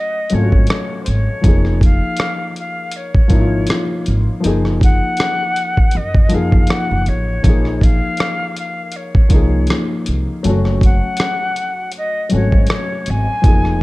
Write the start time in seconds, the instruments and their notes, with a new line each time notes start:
Already playing: felt piano F#3 A3 C#4 F#4, flute D#5
0.30 upright bass G#1, felt piano F#3 A3, closed hi-hat
0.34 felt piano C#4 F4, flute C#5
0.43 felt piano F#4
0.52 kick
0.67 cross-stick, closed hi-hat
0.71 flute C#5
1.03 flute C5, closed hi-hat
1.08 upright bass G#1, flute C#5
1.42 upright bass F1, felt piano F3 A#3, kick, closed hi-hat
1.46 felt piano D#4 G#4
1.65 cross-stick
1.81 flute F5, kick, closed hi-hat
2.17 cross-stick, closed hi-hat
2.56 flute F5, closed hi-hat
2.91 closed hi-hat
2.96 flute C#5
3.15 kick
3.28 upright bass G#1, felt piano F3 A#3, kick, closed hi-hat
3.32 felt piano D#4 E4
3.41 felt piano F4
3.67 cross-stick, closed hi-hat
4.06 upright bass G#1, closed hi-hat
4.40 felt piano F3 A#3, closed hi-hat
4.45 upright bass F#1, felt piano D#4 G#4
4.65 cross-stick
4.81 flute F#5, kick, closed hi-hat
5.17 cross-stick, closed hi-hat
5.56 closed hi-hat
5.77 kick
5.91 upright bass F#2, closed hi-hat
5.97 flute D#5
6.15 kick
6.28 felt piano F3 A#3, closed hi-hat
6.33 upright bass F#2, felt piano D#4 G#4, flute F5
6.52 kick
6.67 cross-stick, closed hi-hat
6.71 flute F#5
6.91 upright bass F#1
7.06 upright bass A1, flute C#5, closed hi-hat
7.43 upright bass A#1, felt piano F3 A#3, kick, closed hi-hat
7.47 felt piano D#4 G#4
7.65 cross-stick
7.81 flute F5, kick, closed hi-hat
8.17 cross-stick, closed hi-hat
8.57 flute F5, closed hi-hat
8.92 closed hi-hat
8.96 flute C#5
9.15 kick
9.29 upright bass C2, felt piano F3 A#3, kick, closed hi-hat
9.33 felt piano D#4 G#4
9.67 cross-stick, closed hi-hat
10.06 upright bass C2, closed hi-hat
10.43 upright bass F#1, felt piano F#3 A3, closed hi-hat
10.47 felt piano C#4 F#4
10.65 cross-stick
10.81 flute F#5, kick, closed hi-hat
11.17 cross-stick, closed hi-hat
11.56 closed hi-hat
11.92 closed hi-hat
11.97 flute D#5
12.29 upright bass G#1, felt piano F#3 A3, closed hi-hat
12.33 felt piano C#4 F#4, flute C#5
12.52 kick
12.67 cross-stick, closed hi-hat
12.73 flute C#5
13.06 upright bass G#1, closed hi-hat
13.10 flute G#5
13.42 upright bass F1, felt piano F3 A#3, kick, closed hi-hat
13.46 felt piano D#4 G#4
13.65 cross-stick